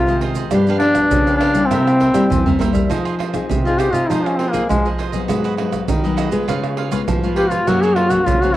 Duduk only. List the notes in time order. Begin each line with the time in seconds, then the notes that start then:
Already playing: F4
0.79 D4
1.36 D4
1.66 C4
3.65 F4
3.79 G4
3.93 F4
4.09 D#4
4.25 C#4
4.37 C4
4.51 A#3
4.69 G#3
7.36 G4
7.50 F4
7.67 F#4
7.82 G#4
7.96 F4
8.10 F#4
8.26 F4
8.42 F#4